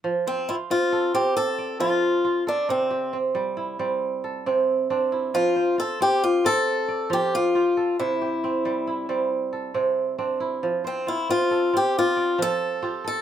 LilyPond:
<<
  \new Staff \with { instrumentName = "Steel-string acoustic guitar" } { \time 12/8 \key f \major \tempo 4. = 91 r8 c'8 e'8 f'4 g'8 a'4 f'4. d'8 | c'4 r1 r4 | f'4 a'8 g'8 f'8 a'4. g'8 f'4. | e'2. r2. |
r8 c'8 e'8 f'4 g'8 f'4 a'4. a'8 | }
  \new Staff \with { instrumentName = "Kora" } { \time 12/8 \key f \major r8 c''8 f'4 a'8 f'4 d''8 f'4. a'8~ | a'8 g'8 c'4 e'8 c'4 a'8 c'4 d'8 e'8~ | e'8 c''8 f'4. f'4 d''8 f'4 g'8 a'8~ | a'8 g'8 c'4 e'8 c'4 a'8 c'4 d'8 e'8~ |
e'8 c''8 f'4 a'8 f'4 d''8 f'4 g'8 a'8 | }
  \new Staff \with { instrumentName = "Kora" } { \clef bass \time 12/8 \key f \major f4 r8 c'4 c'4 r8 f4 f'4 | c4 r8 g4 g4 r8 c4 c'4 | f4 r8 c'4 c'4 r8 f4 f'4 | c4 r8 g4 g4 r8 c4 c'4 |
f4 r8 c'4 c'4 r8 f4 f'4 | }
>>